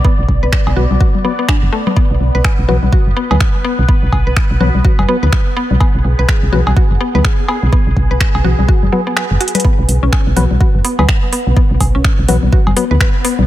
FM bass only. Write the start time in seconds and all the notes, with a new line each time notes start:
0.19 B1
0.29 B1
0.43 B1
0.67 B1
0.76 B1
0.91 B1
1.63 F#1
2.11 B1
2.20 B1
2.35 B1
2.59 B1
2.68 B1
2.83 B1
3.07 F#1
3.31 D2
3.79 B1
4.03 B1
4.12 B1
4.27 B1
4.51 B1
4.60 B1
4.75 B1
4.99 F#1
5.23 D2
5.71 B1
5.95 B1
6.04 B1
6.19 B1
6.43 B1
6.53 B1
6.67 B1
6.91 F#1
7.15 D2
7.63 B1
7.87 B1
7.97 B1
8.11 B1
8.35 B1
8.44 B1
8.59 B1
8.83 F#1
9.31 F#1
9.79 B1
9.88 B1
10.03 B1
10.27 B1
10.37 B1
10.51 B1
10.75 F#1
10.99 D2
11.47 B1
11.71 B1
11.81 B1
11.95 B1
12.19 B1
12.29 B1
12.43 B1
12.67 F#1
12.91 D2
13.39 B1